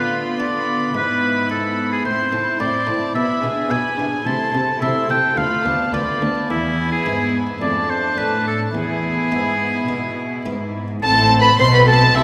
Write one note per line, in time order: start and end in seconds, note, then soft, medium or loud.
0.00 0.91 D3 soft
0.00 0.92 D3 medium
0.00 2.02 B3 medium
0.00 0.94 F4 medium
0.00 0.19 B4 medium
0.00 2.01 B5 medium
0.40 0.79 D4 soft
0.40 0.80 F4 soft
0.40 0.91 D5 medium
0.94 2.05 G#2 medium
0.94 2.01 G#2 soft
0.94 2.04 E4 medium
0.94 1.50 B4 medium
1.50 1.90 E4 soft
1.50 1.91 A4 medium
1.92 2.04 G#4 medium
2.05 2.13 A2 medium
2.05 2.30 A2 soft
2.05 2.31 C4 soft
2.05 2.31 E4 medium
2.05 2.59 C5 medium
2.05 2.31 C6 medium
2.32 2.40 A2 soft
2.32 2.58 A2 soft
2.32 2.61 C4 soft
2.32 2.61 E4 soft
2.32 2.61 A5 soft
2.60 2.68 A2 medium
2.60 2.85 A2 soft
2.60 2.89 C4 soft
2.60 3.00 E4 soft
2.60 2.89 E4 soft
2.60 3.15 D5 medium
2.60 2.88 C6 soft
2.87 3.13 A2 soft
2.87 2.95 A2 medium
2.87 3.16 C4 soft
2.87 3.16 E4 soft
2.87 3.15 A5 soft
3.15 3.23 B2 medium
3.15 3.41 B2 soft
3.15 3.42 B3 soft
3.15 3.42 E4 soft
3.15 3.73 E5 medium
3.15 3.41 B5 soft
3.43 3.51 B2 soft
3.43 3.69 B2 soft
3.43 3.72 D4 soft
3.43 3.71 G#4 soft
3.43 3.71 G#5 soft
3.70 3.79 B2 medium
3.70 3.96 B2 soft
3.70 3.99 B3 soft
3.70 4.11 D4 soft
3.70 3.99 E4 soft
3.70 4.11 E4 soft
3.70 4.28 G#5 medium
3.70 3.99 B5 soft
3.98 4.06 B2 medium
3.98 4.24 B2 soft
3.98 4.26 D4 soft
3.98 4.26 G#4 soft
3.98 4.26 G#5 medium
4.26 4.34 C3 medium
4.26 4.52 C3 soft
4.26 4.52 A3 soft
4.26 4.52 E4 medium
4.26 4.81 A5 medium
4.26 4.52 C6 medium
4.52 4.62 C3 medium
4.52 4.80 C3 soft
4.52 4.82 C4 soft
4.52 4.81 A4 soft
4.52 4.82 A5 soft
4.80 4.89 C3 medium
4.80 5.07 C3 soft
4.80 5.10 A3 soft
4.80 5.22 C4 soft
4.80 5.09 E4 medium
4.80 5.22 E4 soft
4.80 5.09 E5 medium
4.80 5.10 C6 soft
5.08 5.17 C3 medium
5.08 5.35 C3 soft
5.08 5.38 C4 soft
5.08 5.37 A4 soft
5.08 5.39 G5 medium
5.08 5.38 A5 soft
5.37 5.45 D2 medium
5.37 5.63 D2 soft
5.37 5.64 A3 soft
5.37 5.63 F4 soft
5.37 5.93 F5 medium
5.37 5.63 B5 soft
5.64 5.73 D2 soft
5.64 5.91 D2 soft
5.64 5.93 B3 soft
5.64 5.93 D4 soft
5.64 5.93 A5 soft
5.93 6.01 D2 medium
5.93 6.19 D2 soft
5.93 6.22 A3 soft
5.93 6.35 B3 soft
5.93 6.22 F4 soft
5.93 6.35 F4 soft
5.93 6.49 D5 medium
5.93 6.21 B5 soft
6.20 6.29 D2 soft
6.20 6.47 D2 soft
6.20 6.50 B3 soft
6.20 6.50 D4 soft
6.20 6.49 A5 soft
6.49 7.01 E2 medium
6.49 7.02 E2 soft
6.49 7.58 B3 medium
6.49 6.91 E4 medium
6.49 7.58 E4 medium
6.49 7.57 G#5 medium
6.92 7.36 G#4 medium
7.06 7.61 G#2 medium
7.06 7.58 G#2 soft
7.06 7.46 B3 soft
7.06 7.46 E4 soft
7.61 8.17 F2 medium
7.61 8.14 F2 soft
7.61 8.73 A3 medium
7.61 8.74 D4 medium
7.61 7.91 D5 medium
7.61 8.74 A5 medium
7.90 8.20 C5 medium
8.18 8.71 A2 soft
8.18 8.73 A2 medium
8.18 8.59 D4 soft
8.18 8.47 B4 medium
8.47 8.60 A4 medium
8.74 9.30 E2 soft
8.74 9.28 E2 soft
8.74 10.83 B3 soft
8.74 10.79 E4 medium
8.74 10.43 G#4 medium
8.74 10.83 G#5 medium
9.32 9.85 G#2 soft
9.32 9.88 G#2 medium
9.32 9.73 B3 soft
9.32 9.73 E4 soft
9.88 10.45 B2 soft
9.88 10.42 B2 soft
9.88 10.45 B3 soft
10.46 10.99 G#2 soft
10.46 11.02 G#2 medium
10.46 10.87 B3 soft
10.46 10.87 E4 soft
11.03 11.56 A1 medium
11.03 11.55 A2 medium
11.03 11.56 A2 medium
11.03 11.56 C4 medium
11.03 11.38 A4 medium
11.03 11.38 A5 medium
11.03 11.38 A5 loud
11.18 11.32 E4 medium
11.31 11.46 C4 medium
11.40 11.48 B4 medium
11.40 11.50 B5 medium
11.40 11.60 B5 loud
11.45 11.60 A3 medium
11.59 12.14 B1 medium
11.59 12.14 B2 medium
11.59 12.12 B2 medium
11.59 11.74 C4 medium
11.59 12.15 C4 medium
11.59 11.65 C5 medium
11.59 11.66 C6 loud
11.59 11.73 C6 loud
11.73 11.88 A4 medium
11.73 11.87 B4 medium
11.73 11.87 B5 medium
11.73 11.80 B5 medium
11.86 12.02 C4 medium
11.86 11.94 A4 medium
11.86 12.15 A5 loud
11.86 12.15 A5 medium
12.01 12.16 E4 medium
12.15 12.23 C2 medium
12.15 12.23 C3 medium
12.15 12.23 C4 medium
12.15 12.23 E4 medium
12.15 12.23 E5 medium
12.15 12.23 E5 loud